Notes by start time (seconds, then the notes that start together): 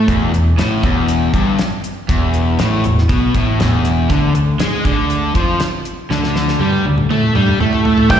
0.07 E1 E2, kick, closed hi-hat
0.32 E1 E2, closed hi-hat
0.57 A1 A2, snare, closed hi-hat
0.83 E1 E2, kick, closed hi-hat
1.08 closed hi-hat
1.34 G1 G2, kick, closed hi-hat
1.59 snare, closed hi-hat
1.84 closed hi-hat
2.08 E1 E2, kick, closed hi-hat
2.34 closed hi-hat
2.59 A1 A2, snare, closed hi-hat
2.84 E1 E2, closed hi-hat
2.98 snare
3.09 B1 B2, kick, closed hi-hat
3.35 A1 A2, kick, closed hi-hat
3.59 E1 E2, snare, closed hi-hat
3.85 closed hi-hat
4.09 D2 D3, kick, closed hi-hat
4.35 D2 D3, closed hi-hat
4.59 G#2 G#3, snare, closed hi-hat
4.85 D2 D3, kick, closed hi-hat
5.10 closed hi-hat
5.35 F2 F3, kick, closed hi-hat
5.60 snare, closed hi-hat
5.85 closed hi-hat
6.10 D2 D3, snare
6.24 snare
6.36 snare
6.48 snare
6.60 G2 G3, high tom
6.72 high tom
6.85 D2 D3, high tom
6.98 mid tom
7.10 A2 A3, mid tom
7.23 mid tom
7.35 G2 G3, mid tom
7.48 mid tom
7.60 A2 A3, mid tom
7.73 floor tom
7.85 floor tom
7.98 floor tom
8.10 C2 C3 E3 G3 C4 E4 G4 C5 G5, kick, open hi-hat